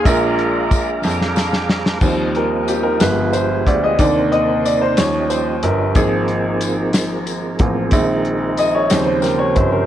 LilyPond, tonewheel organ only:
<<
  \new Staff \with { instrumentName = "Tonewheel organ" } { \time 6/8 \key ees \major \tempo 4. = 61 << { <f'' d'''>2. | <f' ees''>4. <f' aes'>4. | <c' c''>4. <des' ees''>4. | <c' bes'>2. |
<ees' bes'>4. <des c''>4. | } \\ { bes''2. | g'2. | bes'4. g'4. | aes'2. |
aes'4. g'4. | } >> }
  \new Staff \with { instrumentName = "Tonewheel organ" } { \clef bass \time 6/8 \key ees \major aes'2. | c'4. aes4. | c4. f4.~ | f2.~ |
f4. f4. | }
>>